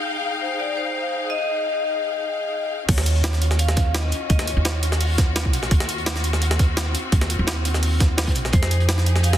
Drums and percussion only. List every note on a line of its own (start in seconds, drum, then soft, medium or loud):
2.89 kick loud
2.89 closed hi-hat medium
2.89 crash loud
2.98 snare medium
3.06 closed hi-hat medium
3.15 closed hi-hat soft
3.24 snare loud
3.24 closed hi-hat medium
3.33 snare soft
3.42 closed hi-hat loud
3.42 closed hi-hat medium
3.51 snare soft
3.59 closed hi-hat medium
3.68 snare medium
3.76 kick loud
3.76 snare medium
3.76 closed hi-hat medium
3.76 closed hi-hat loud
3.95 snare loud
3.95 closed hi-hat medium
4.04 snare medium
4.12 closed hi-hat medium
4.12 closed hi-hat loud
4.30 kick loud
4.30 closed hi-hat medium
4.39 snare medium
4.47 closed hi-hat medium
4.65 snare loud
4.65 closed hi-hat medium
4.83 closed hi-hat medium
4.92 snare soft
5.01 closed hi-hat medium
5.01 open hi-hat medium
5.18 kick loud
5.18 snare soft
5.18 snare medium
5.18 closed hi-hat medium
5.36 snare loud
5.36 closed hi-hat medium
5.36 closed hi-hat loud
5.45 kick medium
5.45 snare soft
5.53 closed hi-hat loud
5.53 closed hi-hat medium
5.63 snare soft
5.71 kick loud
5.71 closed hi-hat medium
5.80 snare medium
5.89 closed hi-hat medium
5.98 closed hi-hat soft
6.06 snare loud
6.06 closed hi-hat medium
6.16 snare soft
6.24 closed hi-hat medium
6.33 snare soft
6.42 closed hi-hat medium
6.51 snare medium
6.59 kick loud
6.59 snare medium
6.59 closed hi-hat medium
6.77 snare loud
6.77 closed hi-hat medium
6.86 snare medium
6.95 closed hi-hat medium
7.12 kick loud
7.12 closed hi-hat medium
7.21 snare medium
7.30 closed hi-hat medium
7.47 snare loud
7.47 closed hi-hat medium
7.65 closed hi-hat medium
7.74 snare soft
7.83 closed hi-hat medium
7.83 open hi-hat medium
8.00 kick loud
8.00 snare soft
8.00 snare medium
8.00 closed hi-hat medium
8.17 snare medium
8.17 snare loud
8.17 closed hi-hat medium
8.23 kick medium
8.23 snare medium
8.23 closed hi-hat medium
8.27 snare medium
8.27 closed hi-hat medium
8.35 closed hi-hat medium
8.44 snare soft
8.53 kick loud
8.53 closed hi-hat medium
8.62 snare medium
8.71 closed hi-hat medium
8.80 closed hi-hat soft
8.88 snare loud
8.88 closed hi-hat medium
8.98 snare soft
9.06 closed hi-hat medium
9.15 snare soft
9.23 closed hi-hat medium
9.33 snare medium